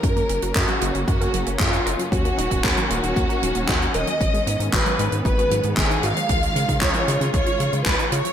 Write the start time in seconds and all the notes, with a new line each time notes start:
Already playing: A#4
0.03 F#2 C#3 F#3 A#3 C#4, kick, closed hi-hat
0.16 A#3, closed hi-hat
0.29 F#1 C#4, closed hi-hat
0.42 F#1 F#4, closed hi-hat
0.55 F#2 F#4 A#4, kick, clap, closed hi-hat
0.68 F#3, closed hi-hat
0.81 F#1 A#3, closed hi-hat
0.95 F#1 C#4, closed hi-hat
1.08 F#2 F#4, kick, closed hi-hat
1.21 A#4, closed hi-hat
1.34 F#1 F#3, closed hi-hat
1.46 F#1 A#3, closed hi-hat
1.59 F#2 C#4 F4, kick, clap, closed hi-hat
1.73 F#4, closed hi-hat
1.86 F#1 A#4, closed hi-hat
1.99 F#3, closed hi-hat
2.12 D#2 D#3 F#3 A#3 F#4, kick, closed hi-hat
2.25 A#3, closed hi-hat
2.38 D#1 D#4, closed hi-hat
2.51 D#1 F#4, kick, closed hi-hat
2.64 D#2 A#4, kick, clap, closed hi-hat
2.77 F#3, closed hi-hat
2.90 D#1 A#3 F#4, closed hi-hat
3.03 D#1 D#4, closed hi-hat
3.16 D#2 F#4, kick, closed hi-hat
3.29 A#4, closed hi-hat
3.42 D#1 F#3, closed hi-hat
3.55 D#1 A#3, closed hi-hat
3.68 D#2 D#4, kick, clap, closed hi-hat
3.81 F#4, closed hi-hat
3.94 D#1 A#4 D#5, closed hi-hat
4.07 F#3, closed hi-hat
4.21 G#1 D#3 F#3 G#3 B3, kick, closed hi-hat
4.34 G#3, closed hi-hat
4.47 G#2 B3, closed hi-hat
4.60 G#2 D#4, closed hi-hat
4.73 G#1 F#4 B4, kick, clap, closed hi-hat
4.86 F#3, closed hi-hat
4.99 G#2 G#3, closed hi-hat
5.12 G#2 B3, closed hi-hat
5.25 G#1 D#4 B4, kick, closed hi-hat
5.38 F#4, closed hi-hat
5.51 G#2 F#3, closed hi-hat
5.63 G#2 G#3, closed hi-hat
5.77 G#1 B3 G#4, kick, clap, closed hi-hat
5.90 D#4, closed hi-hat
6.03 G#2 F#4 F5, closed hi-hat
6.16 F#3, closed hi-hat
6.29 C#2 F3 C#4 F4, kick, closed hi-hat
6.42 G#3, closed hi-hat
6.55 C#3 C#4, closed hi-hat
6.69 C#3 D#4, kick, closed hi-hat
6.81 C#2 F4 C#5, kick, clap, closed hi-hat
6.94 F3, closed hi-hat
7.08 C#3 G#3, closed hi-hat
7.21 C#3 C#4, closed hi-hat
7.34 C#2 D#4 C#5, kick, closed hi-hat
7.46 F4, closed hi-hat
7.60 C#3 F3, closed hi-hat
7.73 C#3 G#3, closed hi-hat
7.86 C#2 C#4 B4, kick, clap, closed hi-hat
7.99 D#4, closed hi-hat
8.12 C#3 F4 C#5, closed hi-hat
8.25 F3, closed hi-hat